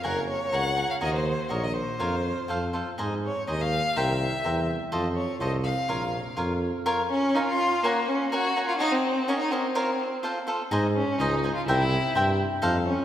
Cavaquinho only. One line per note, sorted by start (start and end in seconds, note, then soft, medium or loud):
0.03 0.19 A#4 medium
0.03 0.19 C#5 medium
0.03 0.19 F#5 medium
0.03 0.19 G#5 medium
0.52 0.67 A#4 soft
0.52 0.67 C#5 medium
0.52 0.68 F#5 medium
0.52 0.68 G#5 medium
0.76 0.91 A#4 soft
0.76 0.92 C#5 soft
0.76 0.92 F#5 medium
0.76 0.92 G#5 medium
1.01 1.16 F#4 medium
1.01 1.16 A#4 medium
1.01 1.16 C#5 medium
1.01 1.16 D#5 medium
1.49 1.64 F#4 soft
1.49 1.65 A#4 medium
1.49 1.65 C#5 medium
1.49 1.65 D#5 medium
1.99 2.14 F4 medium
1.99 2.14 A#4 medium
1.99 2.15 C#5 medium
1.99 2.15 F5 medium
2.48 2.63 F4 medium
2.48 2.64 A4 medium
2.48 2.64 C5 medium
2.48 2.65 F5 medium
2.73 2.88 F4 soft
2.73 2.88 A4 soft
2.73 2.89 C5 medium
2.73 2.89 F5 soft
2.98 3.13 D#4 medium
2.98 3.13 G#4 medium
2.98 3.14 C5 medium
2.98 3.14 D#5 medium
3.47 3.63 D#4 medium
3.47 3.63 G#4 medium
3.47 3.63 C5 medium
3.47 3.63 D#5 medium
3.96 4.11 A#4 medium
3.96 4.11 C5 medium
3.96 4.12 E5 medium
3.96 4.12 G5 medium
4.44 4.59 A#4 medium
4.44 4.59 C5 medium
4.44 4.60 E5 medium
4.44 4.60 G5 medium
4.92 5.07 F4 medium
4.92 5.07 A4 medium
4.92 5.07 C5 medium
4.92 5.08 D#5 medium
5.40 5.55 F4 medium
5.40 5.55 A4 medium
5.40 5.56 C5 soft
5.40 5.56 D#5 medium
5.88 6.03 F4 medium
5.88 6.04 A#4 medium
5.88 6.04 C#5 medium
5.88 6.04 F5 medium
6.37 6.52 F4 medium
6.37 6.52 A#4 medium
6.37 6.53 C#5 medium
6.37 6.53 F5 medium
6.86 7.01 F4 medium
6.86 7.01 A#4 medium
6.86 7.01 C#5 medium
6.86 7.02 F5 medium
7.35 7.50 F4 medium
7.35 7.50 A#4 medium
7.35 7.51 C#5 medium
7.35 7.51 F5 medium
7.84 7.99 A#4 medium
7.84 7.99 C#5 medium
7.84 7.99 F#5 medium
7.84 7.99 G#5 medium
8.32 8.46 A#4 medium
8.32 8.47 C#5 medium
8.32 8.47 F#5 medium
8.32 8.47 G#5 medium
8.56 8.70 A#4 medium
8.56 8.71 C#5 soft
8.56 8.71 F#5 medium
8.56 8.71 G#5 medium
8.80 8.94 F#4 medium
8.80 8.95 A#4 medium
8.80 8.95 C#5 medium
8.80 8.95 D#5 medium
9.28 9.42 F#4 medium
9.28 9.42 A#4 medium
9.28 9.42 C#5 medium
9.28 9.43 D#5 medium
9.51 9.65 F#4 soft
9.51 9.66 A#4 medium
9.51 9.66 C#5 soft
9.51 9.66 D#5 medium
9.75 9.89 F4 medium
9.75 9.90 A#4 medium
9.75 9.90 C#5 medium
9.75 9.90 F5 medium
10.23 10.38 F4 medium
10.23 10.38 A4 medium
10.23 10.38 C5 medium
10.23 10.39 F5 medium
10.47 10.61 F4 medium
10.47 10.62 A4 medium
10.47 10.62 C5 medium
10.47 10.62 F5 medium
10.71 10.86 D#4 medium
10.71 10.86 G#4 medium
10.71 10.86 C5 medium
10.71 10.86 D#5 medium
11.20 11.34 D#4 medium
11.20 11.34 G#4 medium
11.20 11.34 C5 medium
11.20 11.34 D#5 medium
11.44 11.58 D#4 medium
11.44 11.58 G#4 medium
11.44 11.58 C5 soft
11.44 11.59 D#5 medium
11.68 11.82 A#4 medium
11.68 11.82 C5 medium
11.68 11.82 E5 medium
11.68 11.82 G5 medium
12.15 12.29 A#4 medium
12.15 12.29 C5 medium
12.15 12.30 E5 medium
12.15 12.30 G5 medium
12.62 12.76 D#4 medium
12.62 12.76 A4 medium
12.62 12.77 C5 medium
12.62 12.77 F5 medium